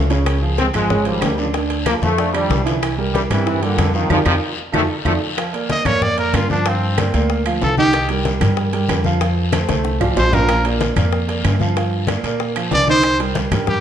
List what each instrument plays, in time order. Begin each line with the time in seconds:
Already playing: upright bass C#2
0.10 grand piano C#3 C#4 C#5, low bongo, high timbale, short guiro
0.26 high bongo, high conga, high timbale, long guiro, claves
0.42 grand piano F3 F4 G#4, high conga
0.57 trombone section G#3 C4, high bongo, high conga, high timbale, low timbale, short guiro
0.73 upright bass G#1, grand piano F3 F4 G#4, trombone section F3 G#3, high bongo, high conga, low conga, high timbale, short guiro, claves
0.90 grand piano C#3 C#4 C#5, high bongo, high conga, low conga, long guiro
1.05 trombone section D#3 G3, grand piano F3 F4 C5, high bongo, high conga, high timbale
1.21 upright bass D2, high bongo, low bongo, high conga, high timbale, low timbale, short guiro, claves
1.38 trombone section C#3 F3, grand piano D3 D4 D5, high bongo, high conga, short guiro
1.54 grand piano D3 D4 D5, high bongo, high conga, high timbale, long guiro
1.70 high bongo, high conga, high timbale
1.86 grand piano F3 F4 A4, trombone section F3 A#3, high bongo, high conga, high timbale, low timbale, short guiro, claves
2.02 upright bass F2, trombone section F3 A3, high bongo, high conga, short guiro
2.17 grand piano D3 D4 D5, high bongo, high conga, high timbale, long guiro
2.33 trombone section D#3 G3, grand piano F3 D4 D5, high conga, high timbale, claves
2.50 upright bass C2, high bongo, low bongo, high conga, low timbale, short guiro
2.66 trombone section D3 F3, grand piano E3 E4 E5, high bongo, high timbale, short guiro
2.82 high bongo, high conga, high timbale, long guiro, claves
2.98 grand piano G3 G4 A#4, high conga
3.14 trombone section E3 G3, high bongo, high conga, high timbale, low timbale, short guiro
3.30 upright bass G2, trombone section C3 E3, grand piano G3 G4 A#4, high bongo, high conga, low conga, high timbale, short guiro, claves
3.46 grand piano E3 E4 E5, high bongo, high conga, long guiro
3.63 trombone section A#2 D3, grand piano G3 G4 A#4, high bongo, high conga, high timbale
3.78 upright bass F2, high bongo, low bongo, high conga, high timbale, low timbale, short guiro, claves
3.94 trombone section C3 D#3, grand piano F3 F4 F5, high bongo, high conga, short guiro
4.09 upright bass F2, trombone section C3 D#3 F3, grand piano D#4 F4 A#4, low bongo, high conga, high timbale, long guiro, claves
4.26 upright bass F2, trombone section C3 D#3 F3, grand piano D#4 F4 A#4, low bongo, high conga, high timbale, long guiro, claves
4.72 upright bass F2, trombone section D#3 F3 A3, grand piano D#4 F4 A4, low bongo, high conga, high timbale, long guiro, claves
5.05 upright bass F2, trombone section D#3 F3 A3, grand piano D#4 F4 A4, low bongo, high conga, high timbale, long guiro, claves
5.37 grand piano F3 F4 F5, high bongo, high conga, high timbale, long guiro, claves
5.53 grand piano A#3 A#4 D5, high conga, high timbale
5.70 trumpet D#5, high bongo, high conga, high timbale, low timbale, short guiro
5.85 upright bass F2, grand piano A#3 A#4 D5, trumpet C#5, high bongo, high conga, low conga, high timbale, short guiro, claves
6.02 trumpet D5, high bongo, high conga, low conga, long guiro
6.18 grand piano A#3 A#4 D5, trumpet A#4, high bongo, high conga, high timbale
6.34 upright bass G2, trumpet F4, high bongo, low bongo, high conga, high timbale, low timbale, short guiro, claves
6.50 grand piano F3 F4 F5, trumpet D4, high bongo, high conga, short guiro
6.66 grand piano F3 F4 F5, trumpet C4, high bongo, high conga, high timbale, long guiro
6.82 high conga
6.97 grand piano A#3 A#4 D5, high bongo, high conga, high timbale, low timbale, short guiro, claves
7.14 upright bass D2, grand piano A#3 A#4 D5, high bongo, high conga, high timbale, short guiro
7.30 high bongo, high conga, long guiro
7.46 grand piano F3 F4 F5, high bongo, high conga, high timbale, claves
7.61 upright bass C2, trumpet A4, high bongo, low bongo, high conga, low timbale, short guiro
7.77 grand piano D#3 D#4 D#5, trumpet G4, high bongo, high conga, short guiro
7.93 grand piano D#3 D#4 D#5, high bongo, high timbale, long guiro, claves
8.09 grand piano G3 G4 A#4, high conga, high timbale
8.25 high bongo, high conga, high timbale, low timbale, short guiro
8.40 upright bass G2, grand piano G3 G4 A#4, high bongo, high conga, low conga, high timbale, short guiro, claves
8.57 high bongo, long guiro
8.73 grand piano G3 G4 A#4, high bongo, high conga, high timbale
8.88 upright bass F2, high bongo, low bongo, high conga, high timbale, low timbale, short guiro, claves
9.04 grand piano F3 F4 F5, high bongo, high conga, short guiro
9.21 grand piano F3 F4 F5, high bongo, high conga, high timbale, long guiro
9.37 high conga
9.52 grand piano A3 A4 C5, high bongo, high conga, high timbale, low timbale, short guiro, claves
9.69 upright bass C2, grand piano A3 A4 C5, high bongo, high conga, high timbale, short guiro
9.85 high bongo, long guiro
10.00 grand piano F3 F4 F5, low bongo, low conga, high timbale, claves
10.17 upright bass A#1, trumpet C5, low bongo, high timbale, short guiro
10.32 grand piano F3 F4 F5, trumpet A#4, low bongo, low conga, low timbale, short guiro
10.48 grand piano F3 F4 F5, high bongo, high conga, high timbale, long guiro, claves
10.64 grand piano A#3 A#4 D5, high conga, high timbale
10.80 high bongo, high conga, high timbale, low timbale, short guiro
10.96 upright bass F2, grand piano A#3 A#4 D5, high bongo, high conga, low conga, high timbale, short guiro, claves
11.12 high bongo, high conga, long guiro
11.28 grand piano A#3 A#4 D5, high bongo, high conga, high timbale
11.44 upright bass G2, high bongo, low bongo, high conga, high timbale, low timbale, short guiro, claves
11.60 grand piano F3 F4 F5, high bongo, high conga, short guiro
11.76 grand piano F3 F4 F5, high bongo, high conga, high timbale, long guiro
11.92 high conga
12.07 grand piano A#3 A#4 D5, high bongo, high conga, high timbale, low timbale, short guiro, claves
12.23 upright bass A#2, grand piano A#3 A#4 D5, high bongo, high conga, high timbale, short guiro
12.40 high bongo, high conga, long guiro
12.56 grand piano F3 F4 F5, high bongo, high conga, high timbale, claves
12.71 upright bass C2, trumpet D5, high bongo, low bongo, high conga, low timbale, short guiro
12.87 grand piano D#3 D#4 D#5, trumpet C5, high bongo, high conga, short guiro
13.03 grand piano D#3 D#4 D#5, high bongo, high timbale, claves
13.20 grand piano G3 G4 A#4, high conga, high timbale
13.35 high bongo, high conga, high timbale, low timbale, short guiro
13.51 upright bass G2, grand piano G3 G4 A#4, high bongo, high conga, low conga, high timbale, short guiro, claves
13.67 trumpet G4, high bongo, high conga, low conga, long guiro